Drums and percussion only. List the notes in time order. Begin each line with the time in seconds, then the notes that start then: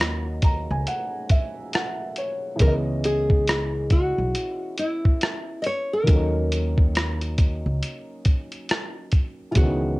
0.01 cross-stick
0.42 kick, closed hi-hat
0.87 closed hi-hat
1.30 kick, closed hi-hat
1.73 cross-stick, closed hi-hat
2.16 closed hi-hat
2.59 kick, closed hi-hat
3.04 closed hi-hat
3.30 kick
3.47 cross-stick, closed hi-hat
3.90 kick, closed hi-hat
4.35 closed hi-hat
4.78 closed hi-hat
5.05 kick
5.21 cross-stick, closed hi-hat
5.64 closed hi-hat
6.07 kick, closed hi-hat
6.52 closed hi-hat
6.78 kick
6.95 cross-stick, closed hi-hat
7.21 closed hi-hat
7.38 kick, closed hi-hat
7.83 closed hi-hat
8.25 kick, closed hi-hat
8.52 closed hi-hat
8.69 cross-stick, closed hi-hat
9.12 kick, closed hi-hat
9.55 kick, closed hi-hat